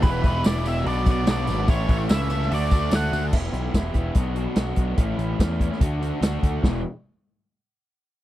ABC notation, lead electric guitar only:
X:1
M:4/4
L:1/16
Q:1/4=145
K:Edor
V:1 name="Lead electric guitar"
B4 d2 e2 d2 d2 d4 | c2 c2 e4 d4 f3 z | z16 | z16 |
z16 |]